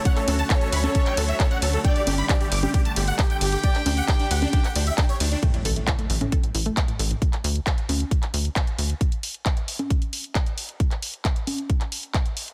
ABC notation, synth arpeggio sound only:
X:1
M:4/4
L:1/16
Q:1/4=134
K:D
V:1 name="Synth arpeggio sound"
z16 | z16 | z16 | A, A,, A A,, E A, A, A,, A A,, E A, z A,, A A,, |
z16 | z16 | z16 |]